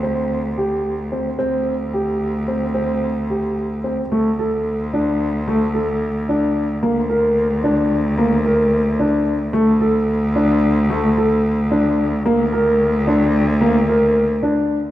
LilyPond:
<<
  \new Staff \with { instrumentName = "Grand piano" } { \time 5/8 \key bes \lydian \tempo 4 = 111 c'4 g'4 c'8 | c'4 g'4 c'8 | c'4 g'4 c'8 | a8 a'4 d'4 |
a8 a'4 d'4 | bes8 bes'4 d'4 | bes8 bes'4 d'4 | a8 a'4 d'4 |
a8 a'4 d'4 | bes8 bes'4 d'4 | bes8 bes'4 d'4 | }
  \new Staff \with { instrumentName = "Cello" } { \clef bass \time 5/8 \key bes \lydian d,2~ d,8 | d,2~ d,8~ | d,2~ d,8 | d,2~ d,8~ |
d,2~ d,8 | d,2~ d,8~ | d,2~ d,8 | d,2~ d,8~ |
d,2~ d,8 | d,2~ d,8~ | d,2~ d,8 | }
>>